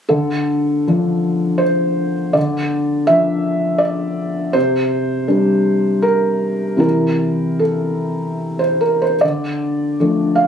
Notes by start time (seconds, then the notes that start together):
0.09 D3 A4
0.88 F3 D4
1.58 C5
2.33 D3 D5
3.07 F3 D4 E5
3.78 D5
4.53 C3 C5
5.28 G3 D4
6.02 A#4
6.77 C3 E3 C4 E4 A#4
7.59 A4
8.59 C5
8.81 A#4
9.02 C5
9.21 D3 D5
10.00 F3 A3 D4
10.35 F5